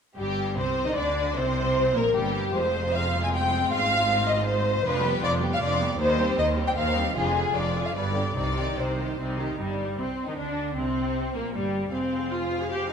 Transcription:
0.17 double bass section G1, cello section G2, viola section G3, violin section G4
0.57 double bass section C2, cello section C3, viola section C4, violin section C5
0.86 cello section D#3, viola section D#4, violin section D#5
0.96 double bass section D2, cello section D3, viola section D4, violin section D5
1.37 double bass section C2, cello section C3, viola section C4, violin section C5
1.95 double bass section A#1, cello section A#2, viola section A#3, violin section A#4
2.15 double bass section G1, cello section G2, viola section G3, violin section G4
2.54 double bass section F1, cello section F2, viola section G#3 C4, violin section F4 C5
2.93 violin section F5
3.23 violin section G#5
3.33 violin section G5
3.71 double bass section G#1, cello section G#2, violin section F5
4.29 violin section D#5
4.48 violin section C5
4.84 double bass section F1, cello section F2, viola section F3 D4, violin section F4 B4
5.03 viola section G3 B3, violin section G4
5.22 double bass section F1, cello section F2, viola section F3 D4, violin section F4 D5
5.41 viola section G3 B3, violin section G4
5.53 violin section F5
5.61 double bass section F1, cello section F2, viola section F3 D4, violin section F4 D5
5.80 viola section G3 B3, violin section G4
5.99 double bass section D#2, cello section D#2, viola section D#3 D#4, violin section C5
6.18 viola section G3 C4, violin section G4
6.38 double bass section D#2, cello section D#2, viola section D#3 D#4, violin section C5 D#5
6.57 viola section G3 C4, violin section G4
6.67 violin section G5
6.76 double bass section D#2, cello section D#2, viola section D#3 D#4, violin section C5 F5
6.96 viola section G3 C4, violin section G4
7.16 double bass section F1, cello section F2, viola section F3 D4, violin section F4 G#4
7.35 viola section D3 F4, violin section G#4
7.55 double bass section F1, cello section F2, viola section F3 D4, violin section F4 D5
7.75 viola section D3 F4, violin section G#4
7.85 violin section F5
7.95 double bass section G1, cello section G2, viola section G3 B3, violin section B4 D5
8.15 viola section D3 D4, violin section G4
8.35 double bass section C2, cello section C3, viola section G3 C4, violin section D#4 D5
8.57 viola section D#3 D#4, violin section G4
8.77 double bass section C2, cello section C3, viola section G3 C4, violin section D#4 C5
8.98 viola section D#3 D#4, violin section G4
9.19 double bass section C2, cello section C3, viola section G3 C4, violin section D#4
9.40 viola section D#3 D#4, violin section G4
9.59 double bass section G1, cello section G2, violin section G3, viola section G3
9.98 double bass section C2, cello section C3, viola section C4, violin section C4
10.28 cello section D#3, viola section D#4, violin section D#4
10.37 double bass section D2, cello section D3, viola section D4, violin section D4
10.76 double bass section C2, cello section C3, violin section C4, viola section C4
11.35 double bass section A#1, cello section A#2, viola section A#3, violin section A#3
11.54 double bass section G1, cello section G2, violin section G3, viola section G3
11.93 double bass section F1, cello section F2, viola section C4, violin section G#4 C5 F5
12.32 viola section F4
12.61 viola section G#4
12.70 viola section G4
12.90 viola section D#4

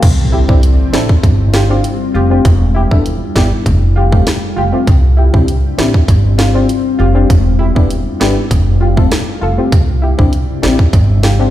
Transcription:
0.02 upright bass C2, ambient pad C3 C4 D4 E4 G4, kick, closed hi-hat, crash, impact
0.32 synth stab E4 G4
0.48 upright bass C2, synth stab C4 D4 E4 G4, kick
0.63 closed hi-hat
0.93 upright bass A1, synth stab C4 D4 E4 A4, cross-stick, snare
1.09 kick
1.23 upright bass G1, ambient pad G3 F4, kick, closed hi-hat
1.53 synth stab F4 G4, cross-stick, snare
1.69 synth stab C4 D4 F4 G4
1.84 closed hi-hat
2.14 upright bass F1, synth stab F4 G4
2.30 synth stab C4 D4 F4 G4
2.45 upright bass E1, ambient pad G3 D4 E4, kick, closed hi-hat
2.75 synth stab E4 G4
2.91 upright bass E1, synth stab B3 D4 E4 A4, kick
3.06 closed hi-hat
3.35 upright bass G1, synth stab B3 D4 E4 G4, kick, cross-stick, snare
3.66 upright bass F1, ambient pad A3 F4, kick, closed hi-hat
3.96 synth stab F4 G4
4.12 synth stab A3 C4 F4 G4, kick
4.27 cross-stick, snare, closed hi-hat
4.56 upright bass F1, synth stab F4 G4
4.72 synth stab A3 C4 F4 G4
4.87 upright bass C2, ambient pad C3 C4 D4 E4 G4, kick, closed hi-hat
5.17 synth stab E4 G4
5.33 upright bass C2, synth stab C4 D4 E4 G4, kick
5.48 closed hi-hat
5.78 upright bass A1, synth stab C4 D4 E4 G4, cross-stick, snare
5.94 kick
6.08 upright bass G1, ambient pad G3 F4, kick, closed hi-hat
6.38 synth stab F4 G4, cross-stick, snare
6.54 synth stab C4 D4 F4 G4
6.69 closed hi-hat
6.99 upright bass F1, synth stab F4 G4
7.14 synth stab C4 D4 F4 G4
7.30 upright bass E1, ambient pad D4 E4, kick, closed hi-hat
7.59 synth stab E4 G4
7.75 upright bass E1, synth stab B3 D4 E4 G4, kick
7.91 closed hi-hat
8.20 upright bass G1, synth stab B3 D4 E4 G4, cross-stick, snare
8.51 upright bass F1, ambient pad G3 A3 F4, kick, closed hi-hat
8.81 synth stab F4 G4
8.97 synth stab A3 C4 F4 A4, kick
9.12 cross-stick, snare, closed hi-hat
9.41 upright bass F1, synth stab F4 A4
9.57 synth stab A3 C4 F4 G4
9.72 upright bass C2, ambient pad C3 C4 D4 E4 G4, kick, closed hi-hat
10.02 synth stab E4 G4
10.18 upright bass C2, synth stab C4 D4 E4 G4, kick
10.33 closed hi-hat
10.62 upright bass A1, synth stab C4 D4 E4 G4, cross-stick, snare
10.79 kick
10.93 upright bass G1, ambient pad G3 C4 F4, kick, closed hi-hat
11.23 synth stab F4 G4, cross-stick, snare
11.39 synth stab C4 D4 F4 G4

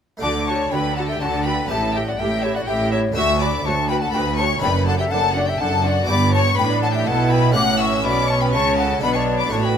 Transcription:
0.17 harpsichord A3 D4 F#4
0.22 double bass section D2, harpsichord D3, cello section D3, viola section F#4, violin section D5 D6, flute A5
0.47 viola section F#4, violin section C#5 C#6, flute A5
0.71 double bass section D2, cello section D3, harpsichord D3, viola section F#4, violin section B4 B5, flute G5
0.96 viola section F#4, violin section A4 A5, flute F#5
1.08 violin section G4 G5, flute E5
1.20 double bass section D2, cello section D3, harpsichord D3, viola section F#4, violin section A4 A5, flute F#5
1.45 viola section F#4, violin section B4 B5, flute G5
1.66 double bass section A1, cello section A2, harpsichord A2 A3 C#4 G4, viola section G4, flute E5, violin section A5
1.71 violin section A4
1.94 violin section G4 G5, viola section G4, flute E5
2.07 violin section F#4 F#5, flute D5
2.19 double bass section A1, cello section A2, harpsichord A2, violin section G4 G5, viola section G4, flute E5
2.42 violin section E4 E5, viola section G4, flute C#5
2.55 violin section F#4 F#5, flute D5
2.67 double bass section A1, cello section A2, harpsichord A2, viola section G4, violin section G4 G5, flute E5
2.92 violin section E4 E5, viola section G4, flute C#5
3.12 harpsichord A3 D4 F#4, violin section E6
3.16 cello section D2, double bass section D2, harpsichord D2, viola section F#4, violin section E5, flute C#6
3.40 viola section F#4, violin section D5 D6, flute B5
3.64 double bass section D2, cello section D2, harpsichord D2, viola section F#4, violin section C#5 C#6, flute A5
3.89 viola section F#4, violin section B4 B5, flute G5
4.01 violin section A4 A5, flute F#5
4.12 cello section D2, double bass section D2, harpsichord D2, viola section F#4, violin section B4 B5, flute G5
4.37 viola section F#4, violin section C#5 C#6, flute A5
4.58 double bass section F#1, harpsichord A3 D4 A4, viola section D4, violin section B4 B5
4.63 cello section F#2, harpsichord F#2, flute G5
4.86 viola section D4, violin section A4 A5, flute F#5
4.99 violin section G4 G5, flute E5
5.10 double bass section F#1, harpsichord F#2, cello section F#2, viola section D4, violin section A4 A5, flute F#5
5.36 viola section D4, violin section F#4 F#5, flute D5
5.47 violin section G4 G5, flute E5
5.60 double bass section F#1, cello section F#2, harpsichord F#2, viola section D4, violin section A4 A5, flute F#5
5.84 viola section D4, violin section F#4 F#5, flute D5
6.04 cello section G2, harpsichord B3 E4 G4
6.09 double bass section G1, harpsichord G2, viola section B3, violin section D5 D6, flute B5
6.34 violin section C#5 C#6, flute A5
6.57 double bass section A1, harpsichord A2, cello section A2, viola section D4, violin section B4 B5, flute G5
6.82 violin section A4 A5, flute F#5
6.94 violin section G4 G5, flute E5
7.06 double bass section B1, harpsichord B2, cello section B2, viola section E4, violin section A4 A5, flute F#5
7.31 violin section B4 B5, flute G5
7.51 double bass section A1, harpsichord A3 C#4 G4
7.55 harpsichord A2, cello section A2, viola section C#4, violin section F#5 F#6, flute D6
7.80 violin section E5 E6, flute C#6
8.04 double bass section B1, harpsichord B2, cello section B2, violin section D5 D6, flute B5
8.29 violin section C#5 C#6, flute A5
8.41 violin section B4 B5, flute G5
8.54 double bass section C#2, harpsichord C#3, cello section C#3, violin section C#5 C#6, flute A5
8.78 violin section A4 A5, flute F#5
9.00 double bass section B1, harpsichord B2 D4 F#4, cello section B2, viola section D4, violin section B4 B5, flute F#5
9.14 violin section C#5 C#6, flute A5
9.39 violin section D5 D6, flute B5
9.47 harpsichord A3 D4 F#4, violin section C#6
9.52 double bass section A1, harpsichord A2, cello section A2, viola section F#4, violin section C#5, flute A5
9.64 violin section B4 B5, flute G5

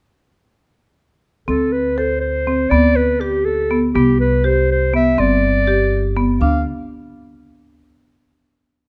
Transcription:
1.48 upright bass D2, marimba C4, clarinet A4
1.72 clarinet B4
1.97 marimba A4, clarinet C5
2.20 clarinet C5
2.47 marimba C4
2.70 upright bass D2, marimba B3, clarinet D5
2.96 clarinet B4
3.21 clarinet G4, marimba G4
3.45 clarinet A4
3.71 marimba B3
3.94 upright bass C2, marimba B3, clarinet G4
4.20 clarinet B4
4.44 marimba G4, clarinet C5
4.71 clarinet C5
4.94 marimba B3, clarinet E5
5.18 upright bass G1, marimba C4, clarinet D5
5.67 marimba G4
6.17 marimba B3
6.41 upright bass D2, marimba D4, clarinet F5

